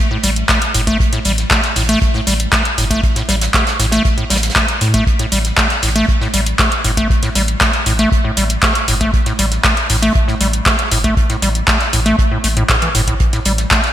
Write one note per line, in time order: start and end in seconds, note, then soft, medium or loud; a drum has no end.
0.11 0.18 A2 medium
0.23 0.43 A1 medium
0.23 0.31 G3 medium
0.23 closed hi-hat medium
0.23 open hi-hat loud
0.36 closed hi-hat medium
0.49 0.60 A3 medium
0.49 kick loud
0.49 snare loud
0.49 clap loud
0.49 closed hi-hat medium
0.62 closed hi-hat soft
0.74 0.94 G1 loud
0.74 0.81 A2 medium
0.74 closed hi-hat medium
0.74 open hi-hat loud
0.87 0.98 A3 loud
0.87 kick medium
0.87 closed hi-hat medium
1.00 kick loud
1.00 closed hi-hat medium
1.13 1.20 A2 medium
1.13 snare soft
1.13 closed hi-hat medium
1.25 1.45 A1 loud
1.25 1.32 G3 medium
1.25 closed hi-hat medium
1.25 open hi-hat loud
1.38 snare soft
1.38 closed hi-hat medium
1.51 1.61 A3 medium
1.51 kick loud
1.51 snare loud
1.51 clap loud
1.51 closed hi-hat medium
1.63 snare medium
1.63 closed hi-hat soft
1.76 1.96 A1 medium
1.76 1.83 A2 medium
1.76 open hi-hat medium
1.89 1.99 A3 loud
1.89 closed hi-hat medium
2.02 kick loud
2.02 closed hi-hat medium
2.14 2.21 A2 medium
2.14 snare soft
2.27 2.47 A1 medium
2.27 2.34 G3 medium
2.27 closed hi-hat medium
2.27 open hi-hat loud
2.40 closed hi-hat medium
2.52 2.63 A3 medium
2.52 kick loud
2.52 snare loud
2.52 clap loud
2.52 closed hi-hat medium
2.65 closed hi-hat medium
2.78 2.97 G1 loud
2.78 2.85 A2 medium
2.78 closed hi-hat medium
2.78 open hi-hat medium
2.91 3.01 A3 loud
2.91 kick medium
2.91 closed hi-hat medium
3.03 kick loud
3.03 closed hi-hat medium
3.16 3.23 A2 medium
3.16 snare medium
3.16 closed hi-hat medium
3.29 3.48 A1 loud
3.29 3.36 G3 medium
3.29 snare medium
3.29 closed hi-hat medium
3.29 open hi-hat medium
3.41 snare loud
3.41 closed hi-hat medium
3.54 3.65 A3 medium
3.54 kick loud
3.54 snare loud
3.54 clap loud
3.54 closed hi-hat medium
3.67 snare medium
3.67 closed hi-hat soft
3.67 closed hi-hat medium
3.79 3.99 A1 medium
3.79 3.87 A2 medium
3.79 snare medium
3.79 closed hi-hat medium
3.79 open hi-hat medium
3.91 4.03 A3 loud
3.91 snare loud
3.91 closed hi-hat medium
4.05 kick loud
4.05 closed hi-hat medium
4.18 4.25 A2 medium
4.18 closed hi-hat soft
4.30 4.50 A1 medium
4.30 4.37 G3 medium
4.30 snare medium
4.30 closed hi-hat medium
4.30 open hi-hat loud
4.36 snare medium
4.36 closed hi-hat medium
4.43 snare medium
4.43 closed hi-hat medium
4.50 snare medium
4.50 closed hi-hat medium
4.56 4.66 A3 medium
4.56 kick loud
4.56 snare loud
4.56 clap loud
4.56 closed hi-hat medium
4.68 closed hi-hat medium
4.68 closed hi-hat soft
4.81 4.88 A2 medium
4.81 5.01 A2 loud
4.81 closed hi-hat medium
4.81 open hi-hat loud
4.94 5.04 A3 loud
4.94 kick medium
4.94 closed hi-hat medium
5.07 kick loud
5.07 closed hi-hat medium
5.19 5.26 A2 medium
5.19 snare soft
5.19 closed hi-hat medium
5.32 5.52 A1 loud
5.32 5.39 G3 medium
5.32 closed hi-hat medium
5.32 open hi-hat loud
5.45 snare soft
5.45 closed hi-hat medium
5.57 5.68 A3 medium
5.57 kick loud
5.57 snare loud
5.57 clap loud
5.57 closed hi-hat medium
5.70 snare medium
5.70 closed hi-hat soft
5.82 6.03 A1 medium
5.82 5.90 A2 medium
5.82 open hi-hat medium
5.82 open hi-hat loud
5.96 6.06 A3 loud
5.96 closed hi-hat medium
6.08 kick loud
6.08 closed hi-hat medium
6.21 6.28 A2 medium
6.21 snare soft
6.34 6.53 A1 medium
6.34 6.41 G3 medium
6.34 closed hi-hat medium
6.34 open hi-hat loud
6.46 closed hi-hat medium
6.59 6.70 A3 medium
6.59 kick loud
6.59 snare loud
6.59 clap loud
6.59 closed hi-hat medium
6.72 closed hi-hat medium
6.84 7.04 G1 loud
6.84 6.92 A2 medium
6.84 closed hi-hat medium
6.84 open hi-hat loud
6.97 7.08 A3 loud
6.97 kick medium
6.97 closed hi-hat medium
7.10 kick loud
7.10 closed hi-hat medium
7.23 7.30 A2 medium
7.23 snare soft
7.23 closed hi-hat medium
7.35 7.55 A1 loud
7.35 7.43 G3 medium
7.35 closed hi-hat medium
7.35 open hi-hat loud
7.48 closed hi-hat medium
7.61 7.71 A3 medium
7.61 kick loud
7.61 snare loud
7.61 clap loud
7.61 closed hi-hat medium
7.73 snare soft
7.73 closed hi-hat soft
7.86 8.06 A1 medium
7.86 7.93 A2 medium
7.86 closed hi-hat medium
7.86 open hi-hat loud
7.99 8.10 A3 loud
7.99 snare soft
7.99 closed hi-hat medium
8.12 kick loud
8.12 closed hi-hat medium
8.25 8.32 A2 medium
8.37 8.57 A1 medium
8.37 8.44 G3 medium
8.37 closed hi-hat medium
8.37 open hi-hat loud
8.50 closed hi-hat medium
8.62 8.73 A3 medium
8.62 kick loud
8.62 snare loud
8.62 clap loud
8.62 closed hi-hat medium
8.75 closed hi-hat medium
8.75 closed hi-hat soft
8.88 9.08 G1 loud
8.88 8.95 A2 medium
8.88 closed hi-hat medium
8.88 open hi-hat loud
9.01 9.11 A3 loud
9.01 kick medium
9.01 closed hi-hat medium
9.13 kick loud
9.13 closed hi-hat medium
9.26 9.33 A2 medium
9.26 snare soft
9.26 closed hi-hat soft
9.39 9.59 A1 loud
9.39 9.46 G3 medium
9.39 closed hi-hat medium
9.39 open hi-hat loud
9.51 snare soft
9.51 closed hi-hat medium
9.64 9.75 A3 medium
9.64 kick loud
9.64 snare loud
9.64 clap loud
9.64 closed hi-hat medium
9.77 snare soft
9.77 closed hi-hat soft
9.89 10.09 A1 medium
9.89 9.97 A2 medium
9.89 open hi-hat medium
9.89 open hi-hat loud
10.02 10.13 A3 loud
10.02 closed hi-hat medium
10.15 kick loud
10.15 closed hi-hat medium
10.28 10.35 A2 medium
10.28 snare soft
10.41 10.60 A1 medium
10.41 10.48 G3 medium
10.41 closed hi-hat medium
10.41 open hi-hat loud
10.53 closed hi-hat medium
10.66 10.77 A3 medium
10.66 kick loud
10.66 snare loud
10.66 clap loud
10.66 closed hi-hat medium
10.79 closed hi-hat medium
10.91 11.11 G1 loud
10.91 10.98 A2 medium
10.91 closed hi-hat medium
10.91 open hi-hat loud
11.04 11.15 A3 loud
11.04 kick medium
11.04 closed hi-hat medium
11.17 kick loud
11.17 closed hi-hat medium
11.30 11.37 A2 medium
11.30 snare soft
11.30 closed hi-hat soft
11.42 11.62 A1 loud
11.42 11.49 G3 medium
11.42 closed hi-hat medium
11.42 open hi-hat loud
11.55 closed hi-hat medium
11.67 11.78 A3 medium
11.67 kick loud
11.67 snare loud
11.67 clap loud
11.67 closed hi-hat medium
11.81 snare soft
11.81 closed hi-hat soft
11.93 12.13 A1 medium
11.93 12.00 A2 medium
11.93 closed hi-hat medium
11.93 open hi-hat loud
12.05 12.16 A3 loud
12.05 snare soft
12.05 closed hi-hat medium
12.19 kick loud
12.19 closed hi-hat medium
12.31 12.38 A2 medium
12.44 12.64 A1 medium
12.44 12.48 A3 medium
12.44 closed hi-hat medium
12.44 open hi-hat loud
12.57 12.64 A2 medium
12.57 closed hi-hat medium
12.69 12.76 A2 medium
12.69 kick loud
12.69 snare loud
12.69 clap loud
12.69 closed hi-hat medium
12.82 12.89 E3 medium
12.82 closed hi-hat soft
12.82 closed hi-hat medium
12.95 13.14 G1 loud
12.95 13.02 A2 loud
12.95 closed hi-hat medium
12.95 open hi-hat loud
13.08 13.15 A2 medium
13.08 kick medium
13.08 closed hi-hat medium
13.20 kick loud
13.20 closed hi-hat medium
13.33 13.40 A2 medium
13.33 snare soft
13.33 closed hi-hat soft
13.45 13.65 A1 loud
13.45 13.53 G3 medium
13.45 closed hi-hat medium
13.45 open hi-hat loud
13.58 snare soft
13.58 closed hi-hat medium
13.71 13.82 A3 medium
13.71 kick loud
13.71 snare loud
13.71 clap loud
13.71 closed hi-hat medium
13.84 snare medium
13.84 closed hi-hat soft